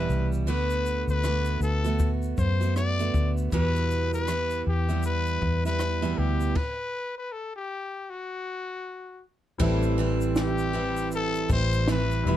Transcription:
Already playing: E2 B2 E3 G3 B3 E4 B4
0.09 C2, shaker
0.32 shaker
0.47 D2 D3 A3 B3 F#4 B4, shaker
0.70 shaker
0.86 shaker
1.08 D2 B4, shaker
1.24 D3 A3 B3 F#4, cross-stick, shaker
1.45 shaker
1.60 D2 A4, shaker
1.84 A3 B3 F#4, shaker
1.99 kick, shaker
2.22 shaker
2.38 F#2 C5, kick, shaker
2.61 A3 B3 F#4, shaker
2.76 D5, cross-stick, shaker
2.99 D3 A3 B3 F#4, shaker
3.14 D2, kick, shaker
3.37 shaker
3.52 E2 B2 E3 G3 B3 E4 B4, kick, shaker
3.76 shaker
3.91 shaker
4.13 B4, shaker
4.27 E3 G3 B3 E4, cross-stick, shaker
4.51 shaker
4.67 E2 G4
4.89 E3 G3 B3 E4, shaker
5.03 B4, shaker
5.26 shaker
5.42 E2, kick
5.65 E3 G3 B3 E4 B4, shaker
5.79 cross-stick, shaker
6.02 E2 B2 E3 G3 B3 E4, shaker
6.18 D2 G4
6.40 shaker
6.55 B4, kick, crash
7.18 B4
7.32 A4
7.56 G4
8.10 F#4
9.58 A1 A2 E3 G3 C4 E4 A4, kick, crash
9.83 shaker
9.98 E3 G3 C4 E4
10.21 shaker
10.36 G4, snare, shaker
10.58 shaker
10.73 E3 G3 C4 E4
10.97 shaker
11.12 A4, shaker
11.35 shaker
11.49 A1 E3 G3 C4 E4 C5, kick, shaker
11.73 shaker
11.88 E3 G3 C4 E4 B4, snare, shaker
12.11 shaker
12.23 E1 E3 G3 E4
12.27 B3 E4 B5

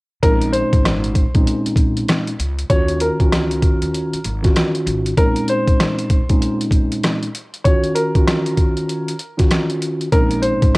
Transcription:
0.22 A#1 A#2 G#3 C4 C#4 D#4 A#4, kick, closed hi-hat
0.41 closed hi-hat
0.52 C5, closed hi-hat
0.73 G#1, kick, closed hi-hat
0.85 cross-stick, snare, closed hi-hat
1.04 closed hi-hat
1.15 kick, closed hi-hat
1.34 A#1 A#2 G#3 C4 C#4 D#4, kick, closed hi-hat
1.47 closed hi-hat
1.66 muted upright bass stroke, closed hi-hat
1.76 A#1, kick, closed hi-hat
1.97 closed hi-hat
2.09 cross-stick, snare, closed hi-hat
2.27 closed hi-hat
2.39 C#2, closed hi-hat
2.59 closed hi-hat
2.70 D#2 D#3 C#4 F4 F#4 C#5, kick, closed hi-hat
2.89 closed hi-hat
3.00 A#4, closed hi-hat
3.20 C#2 D#3 C#4 F4 F#4, kick, closed hi-hat
3.33 cross-stick, snare, closed hi-hat
3.51 closed hi-hat
3.62 kick, closed hi-hat
3.82 D#2, closed hi-hat
3.95 closed hi-hat
4.13 muted upright bass stroke, closed hi-hat
4.25 G#1, closed hi-hat
4.42 D#3 C#4 F4 F#4, kick, snare, closed hi-hat
4.56 cross-stick, snare, closed hi-hat
4.75 closed hi-hat
4.87 G#1, closed hi-hat
5.06 closed hi-hat
5.17 A#2 G#3 C4 C#4 D#4 A#4, kick, closed hi-hat
5.36 closed hi-hat
5.48 C5, closed hi-hat
5.68 kick, closed hi-hat
5.80 cross-stick, snare, closed hi-hat
5.99 closed hi-hat
6.10 kick, closed hi-hat
6.29 A#2 G#3 C4 C#4 D#4, kick, closed hi-hat
6.42 closed hi-hat
6.61 closed hi-hat
6.71 kick, closed hi-hat
6.92 closed hi-hat
7.03 cross-stick, snare, closed hi-hat
7.22 closed hi-hat
7.35 closed hi-hat
7.54 closed hi-hat
7.64 D#3 C#4 F4 F#4 C#5, kick, closed hi-hat
7.83 closed hi-hat
7.95 A#4, closed hi-hat
8.15 D#3 C#4 F4 F#4, kick, closed hi-hat
8.27 cross-stick, snare, closed hi-hat
8.46 closed hi-hat
8.57 kick, closed hi-hat
8.77 closed hi-hat
8.89 closed hi-hat
9.08 closed hi-hat
9.19 closed hi-hat
9.37 D#3 C#4 F4 F#4, kick, snare, closed hi-hat
9.51 cross-stick, snare, closed hi-hat
9.70 closed hi-hat
9.82 closed hi-hat
10.01 closed hi-hat
10.12 A#1 A#2 G#3 C4 C#4 D#4 A#4, kick, closed hi-hat
10.31 closed hi-hat
10.42 C5, closed hi-hat
10.62 G#1, kick, closed hi-hat

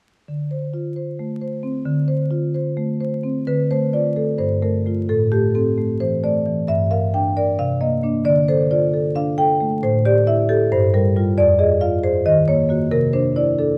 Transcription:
0.28 D3
0.51 C5
0.74 F4
0.96 C5
1.19 A3
1.41 C5
1.63 C4
1.85 D3
2.08 C5
2.31 F4
2.55 C5
2.77 A3
3.00 C5
3.23 C4
3.47 D3 B4
3.71 A3 C5
3.93 F4 D5
4.16 A3 A4
4.38 G2 C5
4.62 A3 A#4
4.86 A3 F4
5.09 A2 A4
5.32 A3 G4
5.55 C4 A4
5.78 A3
6.00 E3 C5
6.23 A3 D5
6.46 E3
6.68 G2 E5
6.91 A#4 F5
7.14 D4 G5
7.37 A#4 D5
7.59 C3 F5
7.81 A#3 D#5
8.03 A#3 D4
8.25 D3 D5
8.48 A4 C5
8.71 F4 D5
8.94 A4
9.15 D4 F5
9.38 A4 G5
9.61 A3
9.83 A2 C5
10.05 G4 D5
10.27 E4 E5
10.49 G4 A4
10.72 G2 C5
10.94 G3 A#4
11.16 G3 F4
11.38 F2 D5
11.59 G#4 D#5
11.81 F4 F5
12.04 G#4 C5
12.26 D#3 D#5
12.48 A#3 C#5
12.69 A#3 F#4
12.91 C3 A#4
13.13 D4 C5
13.36 E4 D5
13.59 D4 A4

